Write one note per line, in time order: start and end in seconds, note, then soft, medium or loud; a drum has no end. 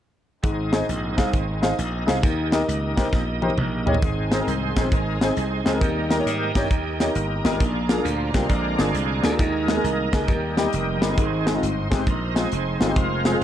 0.43 0.82 G#1 medium
0.43 1.14 G#2 medium
0.43 2.21 D#3 medium
0.43 2.22 G#3 medium
0.43 2.19 C4 medium
0.43 2.22 C4 medium
0.43 2.19 D#4 medium
0.43 3.99 D#4 medium
0.43 2.19 G#4 medium
0.43 2.19 D#5 medium
0.43 kick loud
0.43 closed hi-hat medium
0.72 0.81 D#4 medium
0.72 0.81 G#4 medium
0.72 0.82 C5 medium
0.72 0.82 D#5 medium
0.72 snare loud
0.72 closed hi-hat medium
0.89 1.14 A#1 medium
0.89 closed hi-hat medium
1.17 1.31 C2 medium
1.17 1.26 D#4 medium
1.17 1.26 G#4 medium
1.17 1.26 C5 medium
1.17 1.27 F5 medium
1.17 kick medium
1.17 snare loud
1.17 closed hi-hat medium
1.33 1.72 G#1 medium
1.33 kick medium
1.33 closed hi-hat medium
1.61 1.70 D#4 medium
1.61 1.71 G#4 medium
1.61 1.71 C5 medium
1.61 1.71 F5 medium
1.61 snare loud
1.61 closed hi-hat medium
1.78 2.03 A#1 medium
1.78 2.06 A#5 medium
1.78 closed hi-hat medium
2.06 2.21 C2 medium
2.06 2.15 D#4 medium
2.06 2.16 G#4 medium
2.06 2.16 C5 medium
2.06 2.16 F5 medium
2.06 2.50 G#5 medium
2.06 snare loud
2.06 closed hi-hat medium
2.22 2.61 D#2 loud
2.22 4.00 D#3 medium
2.22 2.93 D#3 medium
2.22 4.00 G3 medium
2.22 3.42 A#3 medium
2.22 4.00 A#3 medium
2.22 3.42 D#4 medium
2.22 3.42 G4 medium
2.22 3.98 D#5 medium
2.22 kick loud
2.22 closed hi-hat medium
2.52 2.61 D#4 medium
2.52 2.61 G4 medium
2.52 2.61 A#4 medium
2.52 2.61 D#5 medium
2.52 snare loud
2.52 closed hi-hat medium
2.68 2.93 C#2 medium
2.68 closed hi-hat medium
2.96 3.11 C2 medium
2.96 3.05 D#4 medium
2.96 3.05 G4 medium
2.96 3.06 A#4 medium
2.96 3.06 C5 medium
2.96 kick medium
2.96 snare loud
2.96 closed hi-hat medium
3.13 3.51 A#1 medium
3.13 kick loud
3.13 snare soft
3.42 3.99 A#3 medium
3.42 3.50 D#4 medium
3.42 3.87 D#4 medium
3.42 3.50 G4 medium
3.42 3.84 G4 medium
3.42 3.51 A#4 medium
3.42 3.51 C5 medium
3.42 high tom medium
3.50 high tom medium
3.58 3.96 A#1 medium
3.58 mid tom medium
3.86 4.31 C4 soft
3.86 3.95 D#4 medium
3.86 4.73 D#4 medium
3.86 3.95 G4 medium
3.86 4.34 G#4 medium
3.86 3.95 A#4 medium
3.86 3.96 C#5 medium
3.86 floor tom medium
3.95 floor tom medium
4.02 4.40 G#1 loud
4.02 4.73 G#2 medium
4.02 5.80 G#4 medium
4.02 5.80 C5 medium
4.02 7.58 D#5 medium
4.02 5.80 G#5 medium
4.02 kick loud
4.02 closed hi-hat medium
4.31 4.88 D#3 soft
4.31 4.89 G#3 soft
4.31 4.36 C4 medium
4.31 4.89 C4 medium
4.31 4.36 D#4 medium
4.31 4.37 G#4 medium
4.31 4.46 A#4 medium
4.31 4.37 C5 medium
4.31 snare loud
4.31 closed hi-hat medium
4.40 4.49 C4 medium
4.40 4.49 D#4 medium
4.40 4.49 G#4 medium
4.40 4.49 A#4 medium
4.47 4.72 C2 medium
4.47 4.76 C5 medium
4.47 closed hi-hat medium
4.76 4.90 A#1 medium
4.76 4.85 C4 medium
4.76 4.85 D#4 medium
4.76 4.85 G#4 medium
4.76 4.91 C5 medium
4.76 4.85 C5 medium
4.76 kick medium
4.76 snare medium
4.76 closed hi-hat medium
4.92 5.30 G#1 medium
4.92 5.19 D#3 soft
4.92 5.19 G#3 soft
4.92 5.19 C4 soft
4.92 5.22 D#4 medium
4.92 5.23 A#4 medium
4.92 kick loud
4.92 closed hi-hat medium
5.21 5.30 C4 medium
5.21 5.78 C4 medium
5.21 5.30 D#4 medium
5.21 5.78 D#4 medium
5.21 5.65 G#4 medium
5.21 5.30 G#4 medium
5.21 5.31 C5 medium
5.21 snare loud
5.21 closed hi-hat medium
5.37 5.62 C2 medium
5.37 closed hi-hat medium
5.66 5.79 C#2 medium
5.66 5.70 C4 medium
5.66 5.70 D#4 medium
5.66 5.82 G#4 medium
5.66 5.71 G#4 medium
5.66 5.71 C5 medium
5.66 snare medium
5.66 closed hi-hat medium
5.73 5.81 C4 medium
5.73 5.81 D#4 medium
5.73 5.82 G#4 medium
5.73 5.82 A#4 medium
5.80 6.19 D#2 medium
5.80 6.51 D#3 medium
5.80 6.52 D#3 medium
5.80 6.52 G3 soft
5.80 6.52 A#3 medium
5.80 6.55 D#4 medium
5.80 6.54 G4 medium
5.80 7.59 A#4 medium
5.80 6.58 A#4 medium
5.80 7.58 G5 medium
5.80 11.14 A#5 medium
5.80 kick loud
5.80 closed hi-hat medium
6.09 6.14 A#3 medium
6.09 6.15 D#4 medium
6.09 6.15 G4 medium
6.09 6.15 A#4 medium
6.09 snare loud
6.09 closed hi-hat medium
6.18 6.27 A#3 medium
6.18 6.27 D#4 medium
6.18 6.28 G4 medium
6.18 6.28 C#5 medium
6.26 6.51 G#2 medium
6.26 closed hi-hat loud
6.55 6.71 G2 medium
6.55 6.69 D#3 soft
6.55 6.69 G3 soft
6.55 6.64 A#3 medium
6.55 6.69 A#3 medium
6.55 6.64 D#4 medium
6.55 7.00 D#4 medium
6.55 7.00 G4 medium
6.55 6.64 G4 medium
6.55 6.64 C#5 medium
6.55 kick medium
6.55 snare medium
6.55 closed hi-hat medium
6.71 7.09 D#2 medium
6.71 kick loud
6.71 closed hi-hat medium
7.00 7.08 A#3 medium
7.00 7.57 A#3 medium
7.00 7.09 D#4 medium
7.00 7.57 D#4 medium
7.00 7.09 G4 medium
7.00 7.35 G4 loud
7.00 7.09 C#5 medium
7.00 snare medium
7.00 closed hi-hat medium
7.15 7.40 G1 medium
7.15 closed hi-hat medium
7.36 7.45 G4 medium
7.44 7.58 G#1 medium
7.44 7.49 A#3 medium
7.44 8.31 D4 medium
7.44 7.49 D#4 medium
7.44 8.31 F4 medium
7.44 7.49 G4 medium
7.44 7.91 G#4 medium
7.44 7.50 A#4 medium
7.44 snare loud
7.44 closed hi-hat medium
7.52 7.60 A#3 medium
7.52 7.60 D#4 medium
7.52 7.61 G4 medium
7.52 7.61 A#4 medium
7.60 7.98 A#1 loud
7.60 8.31 A#2 medium
7.60 9.37 D5 medium
7.60 9.38 F5 medium
7.60 10.26 G#5 medium
7.60 kick loud
7.60 closed hi-hat medium
7.89 7.94 A#3 medium
7.89 7.94 D4 medium
7.89 7.94 F4 medium
7.89 7.95 G#4 medium
7.89 8.06 A#4 medium
7.89 snare loud
7.89 closed hi-hat medium
7.97 8.06 A#3 medium
7.97 8.06 D4 medium
7.97 8.07 F4 medium
7.97 8.07 G#4 medium
8.05 8.30 D2 medium
8.05 8.33 C5 medium
8.05 closed hi-hat medium
8.33 8.47 C2 medium
8.33 9.34 D3 medium
8.33 9.35 G#3 medium
8.33 8.42 A#3 medium
8.33 9.35 C4 medium
8.33 8.43 D4 medium
8.33 8.43 F4 medium
8.33 8.43 G4 medium
8.33 8.48 C5 medium
8.33 kick medium
8.33 snare loud
8.33 closed hi-hat medium
8.49 8.75 A#1 medium
8.49 8.79 D4 medium
8.49 8.79 F4 medium
8.49 8.80 A#4 medium
8.49 kick medium
8.49 closed hi-hat medium
8.79 8.92 G1 medium
8.79 8.87 A#3 medium
8.79 8.87 D4 medium
8.79 9.36 D4 medium
8.79 8.88 F4 medium
8.79 9.35 F4 medium
8.79 9.23 G#4 medium
8.79 8.88 G#4 medium
8.79 snare medium
8.79 closed hi-hat medium
8.94 9.19 C2 medium
8.94 closed hi-hat medium
9.23 9.37 D2 medium
9.23 9.27 A#3 medium
9.23 9.28 D4 medium
9.23 9.28 F4 medium
9.23 9.35 G#4 medium
9.23 9.28 G#4 medium
9.23 snare loud
9.23 closed hi-hat medium
9.31 9.39 A#3 medium
9.31 9.39 D4 medium
9.31 9.39 F4 medium
9.31 9.40 G#4 medium
9.31 9.39 A4 medium
9.38 9.77 D#2 medium
9.38 10.09 D#3 medium
9.38 10.09 G#3 soft
9.38 10.10 A#3 medium
9.38 10.12 D#4 medium
9.38 11.16 A#4 medium
9.38 10.16 A#4 medium
9.38 12.93 D#5 medium
9.38 kick loud
9.38 closed hi-hat medium
9.68 9.73 G#3 medium
9.68 9.73 A#3 medium
9.68 9.73 D#4 medium
9.68 9.73 G#4 medium
9.68 snare loud
9.68 closed hi-hat medium
9.76 9.85 G#3 medium
9.76 9.85 A#3 medium
9.76 9.85 D#4 medium
9.76 9.86 G#4 medium
9.84 10.09 C2 medium
9.84 closed hi-hat medium
10.12 10.26 C#2 medium
10.12 10.21 G#3 medium
10.12 10.21 A#3 medium
10.12 10.26 A#3 medium
10.12 10.56 D#4 medium
10.12 10.22 D#4 medium
10.12 10.55 G4 medium
10.12 10.22 G#4 medium
10.12 kick medium
10.12 snare medium
10.12 closed hi-hat medium
10.26 10.66 D#2 medium
10.26 10.98 D#3 soft
10.26 10.99 D#3 medium
10.26 10.98 G3 soft
10.26 10.56 A#3 medium
10.26 11.17 G5 medium
10.26 kick loud
10.26 closed hi-hat medium
10.57 10.65 G3 medium
10.57 11.13 A#3 medium
10.57 10.66 A#3 medium
10.57 11.02 D#4 medium
10.57 10.66 D#4 medium
10.57 10.92 G4 medium
10.57 10.66 G4 medium
10.57 snare medium
10.57 closed hi-hat medium
10.73 11.03 F1 medium
10.73 closed hi-hat medium
10.93 11.02 G4 medium
11.01 11.16 G1 medium
11.01 11.06 G3 medium
11.01 11.06 A#3 medium
11.01 11.17 C4 medium
11.01 11.07 D#4 medium
11.01 11.88 D#4 medium
11.01 11.07 G4 medium
11.01 11.49 G#4 medium
11.01 snare medium
11.01 closed hi-hat medium
11.09 11.17 G3 medium
11.09 11.17 A#3 medium
11.09 11.18 D#4 medium
11.09 11.18 A#4 medium
11.17 11.56 G#1 medium
11.17 11.88 G#2 medium
11.17 11.51 D#3 soft
11.17 11.51 G#3 soft
11.17 11.52 C4 medium
11.17 13.44 C5 medium
11.17 13.44 C6 medium
11.17 kick loud
11.17 closed hi-hat medium
11.46 11.51 G#3 medium
11.46 11.51 C4 medium
11.46 11.51 D#4 medium
11.46 11.52 G#4 medium
11.46 11.63 A#4 medium
11.46 snare loud
11.46 closed hi-hat medium
11.54 11.63 G#3 medium
11.54 11.63 C4 medium
11.54 11.64 D#4 medium
11.54 11.64 F4 medium
11.63 11.88 G1 medium
11.63 11.91 C5 medium
11.63 closed hi-hat medium
11.91 12.05 G#1 medium
11.91 11.99 G#3 medium
11.91 12.00 C4 medium
11.91 12.00 D#4 medium
11.91 12.00 G4 medium
11.91 12.06 C5 medium
11.91 kick medium
11.91 snare loud
11.91 closed hi-hat medium
12.07 12.45 A#1 medium
12.07 12.34 D#4 medium
12.07 12.37 A#4 medium
12.07 kick medium
12.07 closed hi-hat medium
12.35 12.44 G#3 medium
12.35 12.44 C4 medium
12.35 12.92 C4 medium
12.35 12.92 D#4 medium
12.35 12.45 D#4 medium
12.35 12.45 F4 medium
12.35 12.80 G#4 medium
12.35 snare loud
12.35 closed hi-hat medium
12.52 12.77 F1 medium
12.52 closed hi-hat medium
12.80 12.94 G1 medium
12.80 12.85 G#3 medium
12.80 12.85 C4 medium
12.80 12.85 D#4 medium
12.80 12.86 F4 medium
12.80 12.92 G#4 medium
12.80 snare loud
12.80 closed hi-hat medium
12.88 12.96 G#3 medium
12.88 12.96 C4 medium
12.88 12.97 D#4 medium
12.88 12.97 G4 medium
12.88 12.96 C5 medium
12.96 13.34 F1 medium
12.96 13.44 F3 medium
12.96 13.44 G#3 medium
12.96 13.44 C4 medium
12.96 13.44 F4 medium
12.96 13.44 A#4 medium
12.96 13.44 F5 medium
12.96 kick loud
12.96 closed hi-hat medium
13.25 13.29 G#3 medium
13.25 13.30 C4 medium
13.25 13.30 F4 medium
13.25 13.30 G#4 medium
13.25 snare loud
13.25 closed hi-hat medium
13.32 13.42 G#3 medium
13.32 13.42 C4 medium
13.32 13.42 F4 medium
13.32 13.43 G#4 medium